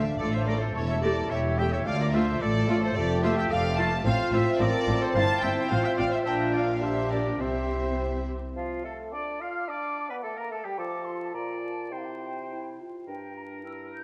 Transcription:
Already playing: A3 D4 E5
0.17 A1 A2 A3 F4 A4 D5
0.33 C5 E5
0.46 A3 A4 A#4 D5
0.59 A4 C5
0.74 E1 E2 E4 A4 C#5
0.88 C#5 E5
1.02 A3 G4 A#4 D5
1.29 E1 E2 G3 G4 C#5 E5
1.58 A3 G4 E5 G5
1.72 C#5 E5
1.85 D2 A3 F4 D5 F5
1.99 A#4 D5
2.13 A3 F4 C5 E5
2.41 A1 A2 A3 A4 D5
2.68 A3 F4
2.81 A4 C5
2.94 F1 F2 A3 F4 G4 A4 D5
3.22 A3 F4 C5 E5
3.36 E5 G5
3.50 F1 F2 A3 A4 D5 F5
3.77 A3 F4 F5 A5
4.04 A1 A2 C4 F4 C5 F5
4.32 A1 A2 C4 F4 C5 E5
4.59 A1 A2 C4 F4 A4 A#4 D5
4.87 A1 A2 C4 F4
5.01 A4 C5
5.13 G1 G2 C4 E4 C5 F5 A5
5.40 G1 G2 C4 E4 E5 G5
5.70 A1 A2 C4 F4 C5 F5
5.84 E5 G5
5.97 A1 A2 C4 F4 D5 F5
6.11 C5 E5
6.24 A#1 A#2 D4 F4 A#4 E5 G5
6.53 D5 F5
6.81 D4 G4 C5 E5
7.10 A#4 D5
7.39 C2 C3 C4 E4 G4 C5 E5
8.56 F3 F4 F5
8.84 A3 A4 A5
9.12 D4 D5 D6
9.41 F4 F5 F6
9.68 D4 D5 D6
10.10 B3 B4 B5
10.23 A3 A4 A5
10.37 A#3 A#4 A#5
10.51 A3 A4 A5
10.64 G3 G4 G5
10.78 F3 F4 A4 D6
11.06 C6
11.20 A5
11.34 A#2 F4 D5 A#5
11.61 A5
11.91 C3 E4 C5 G5
11.98 F5
12.05 G5
12.50 E4
12.80 F4
13.07 G2 D4 A#4 G5
13.36 A#5
13.64 E4 E6
13.93 G6

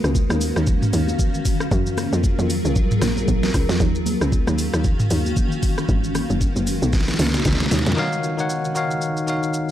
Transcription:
Already playing: D#3 C#4 F#4 F5
0.04 C#2, cross-stick, high conga, shaker
0.15 kick, shaker
0.30 D#2, cross-stick, high conga, shaker
0.41 open hi-hat, shaker
0.56 D#2, cross-stick, shaker
0.67 kick, low conga, shaker
0.82 mid tom, shaker
0.93 D#2, open hi-hat, high conga, shaker
1.08 high conga, shaker
1.19 kick, low conga, shaker
1.34 shaker
1.45 F#3 F4 G#4 A#4, kick, open hi-hat, shaker
1.60 cross-stick, shaker
1.71 F#2, kick, low conga, shaker
1.86 shaker
1.97 cross-stick, open hi-hat, high conga, shaker
2.13 F2, high conga, shaker
2.24 kick, shaker
2.39 F2, high conga, shaker
2.50 open hi-hat, shaker
2.65 C#2, shaker
2.76 kick, low conga, shaker
2.91 mid tom, shaker
3.02 A#1, cross-stick, snare, open hi-hat, high conga, shaker
3.17 high conga, shaker
3.28 A#1, kick, low conga, shaker
3.43 snare, shaker
3.54 C#2, kick, cross-stick, open hi-hat, shaker
3.69 F2, snare, shaker
3.80 D#2 D#3 C#4 F#4 F5, kick, low conga, shaker
3.95 shaker
4.06 open hi-hat, high conga, shaker
4.21 C#2, cross-stick, high conga, shaker
4.32 kick, shaker
4.47 D#2, cross-stick, high conga, shaker
4.58 open hi-hat, shaker
4.74 D#2, cross-stick, shaker
4.84 kick, low conga, shaker
5.00 mid tom, shaker
5.10 D#2, open hi-hat, high conga, shaker
5.25 high conga, shaker
5.37 kick, low conga, shaker
5.52 shaker
5.63 kick, open hi-hat, shaker
5.78 cross-stick, shaker
5.89 G#1 A#4, kick, low conga, shaker
6.04 shaker
6.15 cross-stick, open hi-hat, high conga, shaker
6.30 F#1, high conga, shaker
6.41 kick, shaker
6.56 F#1, high conga, shaker
6.67 open hi-hat, shaker
6.82 B1, shaker
6.93 kick, snare, low conga, shaker
7.01 snare
7.08 snare, shaker
7.14 snare
7.19 C#2, snare, open hi-hat, high conga, shaker
7.27 snare
7.34 snare, high conga, shaker
7.40 snare
7.45 C#2, kick, snare, low conga, shaker
7.53 snare
7.60 snare, shaker
7.66 snare
7.71 D#2, snare, open hi-hat, shaker
7.79 snare
7.86 F2, snare, shaker
7.92 snare
7.96 D#3 D#4 F#4 C#5 F5, shaker
8.13 shaker
8.24 shaker
8.37 D#3 D#4 F#4 C#5 F#5, shaker
8.50 shaker
8.65 shaker
8.74 D#3 D#4 F#4 C#5 F5, shaker
8.91 shaker
9.01 shaker
9.17 shaker
9.26 D#3 D#4 F#4 C#5 F5, shaker
9.43 shaker
9.54 shaker

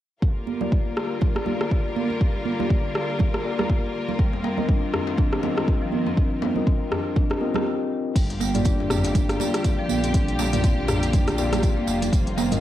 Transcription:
0.22 D3 G3 A#3 F4 A#4, kick
0.47 muted conga, high conga
0.61 A#3 F4 G4 D5, high conga, low conga
0.72 kick
0.96 cross-stick, muted conga
1.21 kick, low conga
1.35 cross-stick, muted conga
1.46 A#3 F4 G4 D5, high conga, low conga
1.61 cross-stick
1.71 kick, muted conga
1.96 high conga
2.10 muted conga, high conga
2.21 kick
2.46 muted conga, high conga
2.60 A#3 F4 G4 D5, high conga, low conga
2.70 kick
2.95 cross-stick, muted conga
3.19 kick, low conga
3.34 cross-stick, muted conga
3.45 A#3 F4 G4 D5
3.59 cross-stick, high conga, low conga
3.70 kick, muted conga
4.09 muted conga, low conga
4.19 D#3 G3 C4, kick
4.33 djembe tone
4.44 G3, muted conga, djembe slap, high conga
4.58 C4 F4 A#4 D#5, high conga, low conga
4.69 D4, kick, djembe tone
4.93 C4, cross-stick, muted conga, djembe bass
5.07 djembe slap
5.18 D4, kick, djembe tone, low conga
5.32 G4, cross-stick, muted conga
5.43 C4 F4 A#4 D#5, djembe slap, high conga, low conga
5.57 G3, cross-stick, djembe tone
5.67 kick, muted conga
5.82 F3
5.92 high conga
6.06 C4, muted conga, djembe tone, high conga
6.17 D4, kick
6.42 G3, djembe slap, muted conga, high conga, djembe tone
6.56 C4 F4 A#4 D#5, high conga, low conga
6.67 C4, kick
6.91 D4, cross-stick, muted conga, djembe tone, djembe bass
7.16 D4, kick, low conga
7.30 G4, cross-stick, muted conga, djembe tone
7.41 C4 F4 A#4 D#5, high conga
7.54 G4, cross-stick, high conga, low conga
8.16 G1 D3 G3 A#3 F4 G4, kick, closed hi-hat, crash, tambourine
8.30 closed hi-hat, djembe tone
8.40 G3, tambourine, muted conga, djembe slap, high conga
8.54 A#3 F4 G4 D5, closed hi-hat, mid tom, tambourine, high conga, low conga
8.65 D4, kick, closed hi-hat, tambourine
8.80 djembe tone
8.90 C4, cross-stick, mid tom, tambourine, muted conga, djembe bass
9.04 closed hi-hat, tambourine, djembe slap
9.15 D4, kick, closed hi-hat, tambourine, low conga
9.29 G4, cross-stick, closed hi-hat, tambourine, muted conga
9.40 A#3 F4 G4 D5, tambourine, djembe slap, high conga, low conga
9.54 G3, cross-stick, closed hi-hat, tambourine
9.64 kick, closed hi-hat, tambourine, muted conga, djembe tone
9.79 F3
9.89 A#1, tambourine, high conga
10.04 C4, closed hi-hat, tambourine, muted conga, djembe tone, high conga
10.14 D4, kick, closed hi-hat, tambourine
10.28 closed hi-hat
10.39 G3, tambourine, djembe slap, muted conga, high conga
10.53 A#3 F4 G4 D5, closed hi-hat, mid tom, tambourine, djembe tone, high conga, low conga
10.64 C4, kick, closed hi-hat, tambourine
10.88 D4, cross-stick, mid tom, tambourine, muted conga, djembe tone, djembe bass
11.03 closed hi-hat, tambourine
11.13 D4, kick, closed hi-hat, mid tom, tambourine, low conga
11.27 G4, cross-stick, closed hi-hat, tambourine, muted conga
11.38 A#3 F4 G4 D5, tambourine, djembe tone
11.52 G4, cross-stick, closed hi-hat, tambourine, high conga, low conga
11.63 kick, closed hi-hat, tambourine, muted conga
11.77 A#3, djembe tone
11.87 F1, tambourine, djembe slap
12.02 G4, closed hi-hat, tambourine, muted conga, low conga
12.12 F1 D#3 F3 G3 C4, kick, closed hi-hat, tambourine
12.26 closed hi-hat, djembe tone
12.37 G3, tambourine, djembe slap, muted conga, high conga
12.51 C4 F4 A#4 D#5, closed hi-hat, mid tom, tambourine, high conga, low conga

